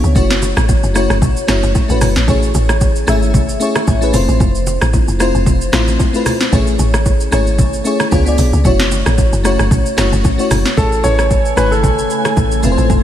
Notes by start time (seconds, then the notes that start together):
Already playing: B3 D4 F4 G#4 C#5
0.04 C#2, high bongo, shaker
0.15 F#1 A3 C#4 E4 F#4 C#5, kick, low conga, shaker
0.30 snare, shaker
0.42 low bongo, shaker
0.57 A1, cross-stick, high bongo, low bongo, shaker
0.69 kick, high bongo, shaker
0.83 F#1, shaker
0.94 A3 C#4 E4 F#4 C#5, cross-stick, shaker
1.10 F#1, cross-stick, shaker
1.22 A1, kick, low conga, shaker
1.37 shaker
1.47 F#1 A3 C#4 E4 F#4 C#5, cross-stick, snare, shaker
1.63 F#1, low bongo, shaker
1.75 kick, high bongo, shaker
1.88 A1 A3 C#4 E4 F#4 B4, shaker
2.01 F#1, cross-stick, open hi-hat, low conga, shaker
2.16 A1, snare, high bongo, shaker
2.27 A1 A3 C#4 E4 G#4 C#5, kick, low conga, shaker
2.43 shaker
2.54 A1, low bongo, shaker
2.69 cross-stick, high bongo, low bongo, shaker
2.81 kick, high bongo, shaker
2.96 shaker
3.07 G#1 A3 C#4 E4 G#4 E5, cross-stick, shaker
3.22 shaker
3.34 kick, low conga, shaker
3.49 shaker
3.60 A3 C#4 E4 G#4 C#5, shaker
3.75 cross-stick, low bongo, shaker
3.87 A1, kick, high bongo, shaker
4.01 A3 C#4 E4 G#4 B4, shaker
4.13 F1 A3 C4 E4 F4 C5, open hi-hat, low conga, shaker
4.28 A1, high bongo, shaker
4.40 F1, kick, low conga, shaker
4.55 shaker
4.67 low bongo, shaker
4.81 A1, cross-stick, high bongo, low bongo, shaker
4.93 kick, high bongo, shaker
5.08 F1, shaker
5.19 A3 C4 E4 F4 C5, cross-stick, shaker
5.35 F1, shaker
5.46 kick, low conga, shaker
5.61 shaker
5.72 A1 A3 C4 E4 F4 C5, cross-stick, snare, shaker
5.88 low bongo, shaker
5.99 kick, high bongo, shaker
6.13 A3 C4 E4 F4 B4, shaker
6.26 cross-stick, open hi-hat, low conga, shaker
6.41 snare, high bongo, shaker
6.52 A1 A3 C#4 E4 G#4 C#5, kick, low conga, shaker
6.67 shaker
6.79 A1, low bongo, shaker
6.94 cross-stick, high bongo, low bongo, shaker
7.06 kick, high bongo, shaker
7.20 shaker
7.31 G#1 A3 C#4 E4 G#4 C#5, cross-stick, shaker
7.47 shaker
7.59 kick, low conga, shaker
7.73 shaker
7.84 A3 C#4 E4 G#4 C#5, shaker
8.00 cross-stick, low bongo, shaker
8.11 C#2 B3 D4 F4 G#4 C#5, kick, high bongo, shaker
8.26 B3 D4 F4 G#4 D5, shaker
8.38 B1, open hi-hat, low conga, shaker
8.53 C#2, high bongo, shaker
8.64 F#1 A3 C#4 E4 F#4 C#5, kick, low conga, shaker
8.79 snare, shaker
8.91 low bongo, shaker
9.06 A1, cross-stick, high bongo, low bongo, shaker
9.18 kick, high bongo, shaker
9.33 F#1, shaker
9.44 A3 C#4 E4 F#4 C#5, cross-stick, shaker
9.59 F#1, cross-stick, shaker
9.71 A1, kick, low conga, shaker
9.86 shaker
9.97 F#1 A3 C#4 E4 F#4 C#5, cross-stick, snare, shaker
10.12 F#1, low bongo, shaker
10.24 A1, kick, high bongo, shaker
10.38 A3 C#4 E4 F#4 C#5, shaker
10.51 F#1, cross-stick, open hi-hat, low conga, shaker
10.66 snare, high bongo, shaker
10.76 A1 C#3 A3 C#4 E4 G#4 A4 C#5 G#5, kick, low conga, shaker
10.92 shaker
11.03 A1 A3 C#4 E4 G#4 B4 C#5, low bongo, shaker
11.19 cross-stick, shaker
11.30 kick, high bongo, shaker
11.45 shaker
11.56 G#1 A3 C#4 E4 B4 C#5 G#5, cross-stick, shaker
11.72 A4, shaker
11.84 kick, low conga, shaker
11.98 shaker
12.10 shaker
12.25 cross-stick, low bongo, shaker
12.37 A1, kick, high bongo, shaker
12.51 shaker
12.63 F1 F3 A3 C4 E4 F4 A4 B4, low conga, shaker
12.72 C5
12.78 A1, high bongo, shaker
12.90 F1, kick, low conga, shaker